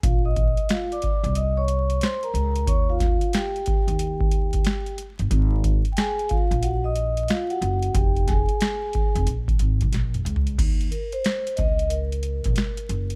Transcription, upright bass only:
X:1
M:4/4
L:1/16
Q:"Swing 16ths" 1/4=91
K:Bbm
V:1 name="Upright bass" clef=bass
B,,,3 z4 C,,4- C,, z2 D,,2 | E,,3 z4 E,,4- E,, z3 =G,,, | A,,,3 z4 B,,,4- B,,, z2 G,,,2 | F,,,3 z4 F,,, B,,,2 A,,, _C,, B,,,2 D,,2 |
E,,2 z4 D,,4- D,, B,,, z2 G,,,2 |]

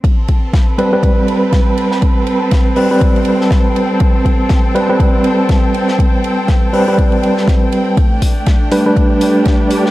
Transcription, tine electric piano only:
X:1
M:4/4
L:1/16
Q:"Swing 16ths" 1/4=121
K:Am
V:1 name="Tine electric piano"
z6 [G,CB] [G,CB]8- [G,CB]- | [G,CB]6 [G,CB] [G,CB]8- [G,CB]- | [G,CB]6 [G,CB] [G,CB]8- [G,CB]- | [G,CB]6 [G,CB] [G,CB]8- [G,CB] |
z6 [G,DB] [G,DB]8- [G,DB] |]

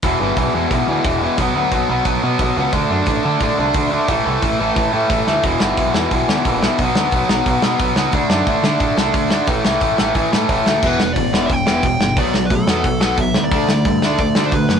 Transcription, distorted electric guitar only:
X:1
M:4/4
L:1/8
Q:1/4=178
K:Em
V:1 name="Distorted electric guitar" clef=bass
[E,,B,,E,] [E,,B,,E,] [E,,B,,E,] [E,,B,,E,] [E,,B,,E,] [E,,B,,E,] [E,,B,,E,] [E,,B,,E,] | [B,,F,B,] [B,,F,B,] [B,,F,B,] [B,,F,B,] [B,,F,B,] [B,,F,B,] [B,,F,B,] [B,,F,B,] | [D,A,D] [D,A,D] [D,A,D] [D,A,D] [D,A,D] [D,A,D] [D,A,D] [D,A,D] | [A,,E,A,] [A,,E,A,] [A,,E,A,] [A,,E,A,] [A,,E,A,] [A,,E,A,] [A,,E,A,] [A,,E,A,] |
[E,,B,,E,] [E,,B,,E,] [E,,B,,E,] [E,,B,,E,] [E,,B,,E,] [E,,B,,E,] [E,,B,,E,] [E,,B,,E,] | [B,,F,B,] [B,,F,B,] [B,,F,B,] [B,,F,B,] [B,,F,B,] [B,,F,B,] [B,,F,B,] [B,,F,B,] | [D,A,D] [D,A,D] [D,A,D] [D,A,D] [D,A,D] [D,A,D] [D,A,D] [D,A,D] | [A,,E,A,] [A,,E,A,] [A,,E,A,] [A,,E,A,] [A,,E,A,] [A,,E,A,] [A,,E,A,] [A,,E,A,] |
[E,,B,,E,] [E,,B,,] [E,,B,,] [E,,B,,E,] [E,,B,,] [E,,B,,E,] [E,,B,,] [E,,B,,] | [B,,F,B,] [B,,F,] [B,,F,] [B,,F,B,] [B,,F,] [B,,F,B,] [B,,F,] [B,,F,] | [D,A,D] [D,A,] [D,A,] [D,A,D] [D,A,] [D,A,D] [D,A,] [D,A,] |]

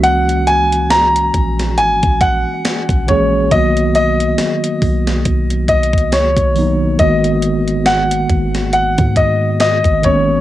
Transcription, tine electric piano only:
X:1
M:4/4
L:1/8
Q:"Swing 16ths" 1/4=69
K:G#m
V:1 name="Tine electric piano"
[E,G,A,CF]2 z4 z [E,G,A,CG] | [D,F,A,B,F]3 z4 [D,F,A,B,D] | [D,G,A,B,F]3 z4 [D,G,A,B,C] |]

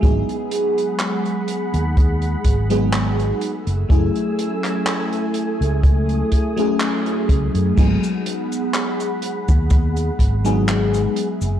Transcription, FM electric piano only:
X:1
M:4/4
L:1/16
Q:"Swing 16ths" 1/4=62
K:G#phr
V:1 name="FM electric piano"
[F,G,B,DG]8- [F,G,B,DG]3 [F,G,B,DG]3 z2 | [F,A,CEG]8- [F,A,CEG]3 [F,A,CEG]4- [F,A,CEG] | [F,G,B,DG]8- [F,G,B,DG]3 [F,G,B,DG]3 z2 |]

